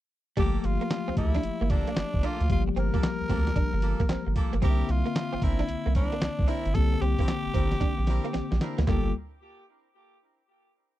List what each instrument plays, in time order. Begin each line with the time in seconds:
0.37 analog synth bass G1, tine electric piano F3 A3 A#3 G4, clean electric guitar G3, horn section A#3 F4 G4 A4, tenor saxophone G4, kick, closed hi-hat
0.60 tenor saxophone G4
0.64 analog synth bass G1, tenor saxophone F4, muted clean electric guitar stroke, closed hi-hat
0.81 clean electric guitar A#3, closed hi-hat
0.90 snare, clap, closed hi-hat
1.08 analog synth bass D2, clean electric guitar C4
1.17 analog synth bass D2, horn section A#3 F4 G4 A4, tenor saxophone E4, muted clean electric guitar stroke, kick, closed hi-hat
1.35 clean electric guitar D4, snare, closed hi-hat
1.43 analog synth bass G1, closed hi-hat
1.61 analog synth bass G1, clean electric guitar A#3
1.70 horn section A#3 F4 G4 A4, tenor saxophone D4, muted clean electric guitar stroke, kick, closed hi-hat
1.87 clean electric guitar A#3, closed hi-hat
1.96 analog synth bass G1, snare, clap, closed hi-hat
2.14 analog synth bass G1, kick
2.23 horn section A#3 F4 G4 A4, clean electric guitar D4, tenor saxophone F4, closed hi-hat
2.41 analog synth bass D2, closed hi-hat
2.49 analog synth bass G1, tine electric piano F3 G3 A#3 G4, tenor saxophone F4, kick, closed hi-hat
2.68 muted clean electric guitar stroke
2.76 analog synth bass G1, clean electric guitar C4, tenor saxophone A#4, closed hi-hat
2.93 horn section A#3 F4 G4 A4, clean electric guitar A#3, kick, closed hi-hat
3.03 snare, clap, closed hi-hat
3.21 analog synth bass D2
3.29 analog synth bass D2, horn section A#3 F4 G4 A4, clean electric guitar C4, kick, closed hi-hat
3.47 snare, closed hi-hat
3.56 analog synth bass G1, clean electric guitar D4, kick, closed hi-hat
3.73 analog synth bass G1, muted clean electric guitar stroke
3.82 horn section A#3 F4 G4 A4, closed hi-hat
4.00 clean electric guitar A#3, kick, closed hi-hat
4.09 analog synth bass G1, clean electric guitar C4, snare, clap, closed hi-hat
4.27 analog synth bass G1, muted clean electric guitar stroke
4.36 horn section A#3 F4 G4 A4, kick, closed hi-hat
4.53 analog synth bass G1, clean electric guitar A#3, closed hi-hat
4.62 analog synth bass C2, tine electric piano D3 A#3 C4 D4, horn section C4 D4 E4 A#4, clean electric guitar C4, tenor saxophone G4, kick, closed hi-hat
4.70 tine electric piano E5
4.88 analog synth bass C2, tenor saxophone F4, muted clean electric guitar stroke, closed hi-hat
5.06 clean electric guitar A#3, closed hi-hat
5.16 snare, clap, closed hi-hat
5.33 analog synth bass G1, clean electric guitar C4
5.42 analog synth bass G1, horn section C4 D4 E4 A#4, tenor saxophone E4, muted clean electric guitar stroke, kick, closed hi-hat
5.59 clean electric guitar D4, snare, closed hi-hat
5.69 analog synth bass C2, closed hi-hat
5.86 analog synth bass C2, clean electric guitar A#3
5.94 horn section C4 D4 E4 A#4, tenor saxophone D4, muted clean electric guitar stroke, kick, closed hi-hat
6.12 clean electric guitar A#3, closed hi-hat
6.21 analog synth bass C2, snare, clap, closed hi-hat
6.39 analog synth bass C2, kick
6.48 horn section C4 D4 E4 A#4, clean electric guitar D4, tenor saxophone E4, closed hi-hat
6.66 analog synth bass G1, closed hi-hat
6.74 analog synth bass C2, tine electric piano D3 A#3 C4 G4, tenor saxophone A4, kick, closed hi-hat
6.93 muted clean electric guitar stroke
7.01 analog synth bass C2, clean electric guitar C4, tenor saxophone G4, closed hi-hat
7.18 clean electric guitar A#3, horn section C4 D4 E4 A#4, kick, closed hi-hat
7.28 snare, clap, closed hi-hat
7.46 analog synth bass G1
7.54 analog synth bass G1, clean electric guitar C4, horn section C4 D4 E4 A#4, kick, closed hi-hat
7.72 snare, closed hi-hat
7.81 analog synth bass A#1, clean electric guitar D4, kick, snare, closed hi-hat
7.98 analog synth bass A#1, muted clean electric guitar stroke
8.07 horn section C4 D4 E4 A#4, snare, closed hi-hat
8.24 clean electric guitar A#3, closed hi-hat
8.33 analog synth bass A#1, clean electric guitar C4, snare, closed hi-hat
8.51 analog synth bass A#1, muted clean electric guitar stroke, snare
8.60 horn section C4 D4 E4 A#4, snare, closed hi-hat
8.78 analog synth bass D2, clean electric guitar A#3, snare, closed hi-hat
8.87 analog synth bass G1, tine electric piano G3 A#3 F4 A4, horn section A#3 F4 G4 A4, clean electric guitar A#3, tenor saxophone G4, kick, clap, floor tom